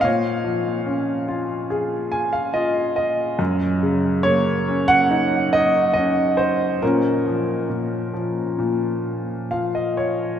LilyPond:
<<
  \new Staff \with { instrumentName = "Upright piano" } { \time 4/4 \key bes \minor \tempo 4 = 70 << { f''4. r4 aes''16 f''16 ees''8 ees''8 | r4 des''8. ges''8. ees''8 ees''8 c''8 | bes'2. f''16 ees''16 des''8 | } \\ { des''2 r2 | r1 | des'2. r4 | } >> }
  \new Staff \with { instrumentName = "Upright piano" } { \clef bass \time 4/4 \key bes \minor bes,8 f8 des'8 f'8 aes'4 f'4 | ges,8 des8 bes8 des'8 ees'4 des'4 | bes,8 f8 bes,8 f8 bes,4 f4 | }
>>